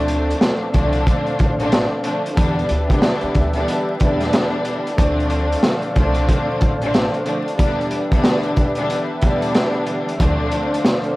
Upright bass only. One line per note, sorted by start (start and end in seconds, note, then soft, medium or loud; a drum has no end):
0.00 0.32 D2 loud
0.75 1.02 C2 medium
1.40 1.85 A1 medium
2.37 2.65 E2 loud
2.70 2.87 D2 medium
3.23 muted upright bass stroke medium
3.35 3.63 D2 loud
4.01 4.29 E2 medium
4.98 5.54 D2 loud
5.96 6.24 C2 medium
6.62 7.07 A1 medium
10.20 10.76 D2 loud